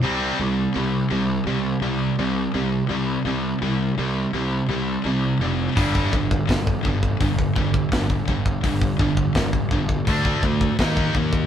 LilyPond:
<<
  \new Staff \with { instrumentName = "Distorted electric guitar" } { \clef bass \time 4/4 \key c \lydian \tempo 4 = 84 <c g c'>8 <c g>8 <c g>8 <c g>8 <c g>8 <c g>8 <c g>8 <c g>8 | <c g>8 <c g>8 <c g>8 <c g>8 <c g>8 <c g>8 <c g>8 <c g>8 | <g, d g>8 <g, d>8 <g, d>8 <g, d>8 <g, d>8 <g, d>8 <g, d>8 <g, d>8 | <g, d>8 <g, d>8 <g, d>8 <g, d>8 <d a d'>8 <d a>8 <dis ais dis'>8 <dis ais>8 | }
  \new Staff \with { instrumentName = "Distorted electric guitar" } { \clef bass \time 4/4 \key c \lydian <c g c'>8 <c g>8 <c g>8 <c g>8 <c g>8 <c g>8 <c g>8 <c g>8 | <c g>8 <c g>8 <c g>8 <c g>8 <c g>8 <c g>8 <c g>8 <c g>8 | <g, d g>8 <g, d>8 <g, d>8 <g, d>8 <g, d>8 <g, d>8 <g, d>8 <g, d>8 | <g, d>8 <g, d>8 <g, d>8 <g, d>8 <d a d'>8 <d a>8 <dis ais dis'>8 <dis ais>8 | }
  \new Staff \with { instrumentName = "Picked electric bass" } { \clef bass \time 4/4 \key c \lydian c,8 c,8 c,8 c,8 c,8 c,8 c,8 c,8 | c,8 c,8 c,8 c,8 c,8 c,8 c,8 f,,8 | g,,8 g,,8 g,,8 g,,8 g,,8 g,,8 g,,8 g,,8 | g,,8 g,,8 g,,8 g,,8 d,8 d,8 dis,8 dis,8 | }
  \new DrumStaff \with { instrumentName = "Drums" } \drummode { \time 4/4 r4 r4 r4 r4 | r4 r4 r4 r4 | <hho bd>16 bd16 bd16 bd16 <hho bd sn>16 bd16 bd16 bd16 <hho bd>16 bd16 bd16 bd16 <hho bd sn>16 bd16 bd16 bd16 | <hho bd>16 bd16 bd16 bd16 <hho bd sn>16 bd16 bd16 bd16 <hho bd>16 bd16 bd16 bd16 <hho bd sn>16 bd16 bd16 bd16 | }
>>